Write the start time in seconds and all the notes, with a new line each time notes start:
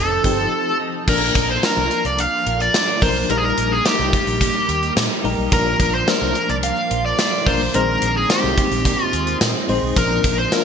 Already playing: F1 F3 C4 D#4 A4 C5
0.24 G1 F3 C4 D#4 G4 C5, kick, closed hi-hat
0.32 A4
0.52 A4
0.80 D#4
1.07 A#1 F3 A#3 D4 A#4, kick, crash
1.35 A#1 D#4, kick, closed hi-hat
1.49 F4 C5
1.63 F3 A#3 D4 A#4, snare, closed hi-hat, tambourine
1.77 C2
1.91 F4, closed hi-hat
2.05 C2 D5, closed hi-hat
2.19 D4 F5, closed hi-hat
2.46 A#1 A#4, closed hi-hat
2.60 D5, closed hi-hat
2.74 F4 D5, snare, closed hi-hat, tambourine
3.02 B1 F3 A#3 D4 A#4 C5, kick, open hi-hat
3.29 A#1 G3 A#3 D#4 A#4, closed hi-hat
3.37 G#4
3.44 A#4
3.58 A#1 D#4, closed hi-hat
3.72 G#4
3.85 G3 A#3 D#4 G4 A#4, snare, closed hi-hat, tambourine
3.99 C2
4.13 D#4, kick, closed hi-hat
4.27 A#1, closed hi-hat
4.41 A#3, kick, closed hi-hat
4.69 D#2 G4, closed hi-hat
4.83 closed hi-hat
4.96 A#2 D#4, snare, closed hi-hat, tambourine
5.24 A#1 G3 A#3 D#4 G4 A#4, open hi-hat
5.38 B1
5.51 A#1 F3 A#3 D4 A#4, kick, closed hi-hat
5.80 A#1 D4, kick, closed hi-hat
5.95 C5
6.07 F3 A#3 D4 A#4 C5, snare, closed hi-hat, tambourine
6.22 C2
6.35 D4, closed hi-hat
6.49 C2 D5, closed hi-hat
6.63 A#3 F5, closed hi-hat
6.91 A#1 F4, closed hi-hat
7.06 D5
7.19 D4 D5, snare, closed hi-hat, tambourine
7.46 B1 F3 A#3 D4 F4 A#4 C5, kick, open hi-hat
7.74 A#1 D#3 G#3 C4 D#4 A#4 C5, closed hi-hat
8.02 A#1 C4, closed hi-hat
8.17 G#4
8.29 G#3 A#3 C4 D#4 G4 C5, snare, closed hi-hat, tambourine
8.44 C2
8.58 C4, kick, closed hi-hat
8.71 A#1, closed hi-hat
8.85 A#3, kick, closed hi-hat
9.05 F4
9.13 D#2 G#4, closed hi-hat
9.27 closed hi-hat
9.41 A#2 C4, snare, closed hi-hat, tambourine
9.68 A#1 G#3 C4 D#4 G#4 C5, open hi-hat
9.83 B1
9.96 A#1 F3 A#3 C#4 A#4, kick, closed hi-hat
10.03 D4
10.24 A#1 D4, kick, closed hi-hat
10.39 C5
10.51 F3 A#3 D4 F4 A#4, snare, closed hi-hat, tambourine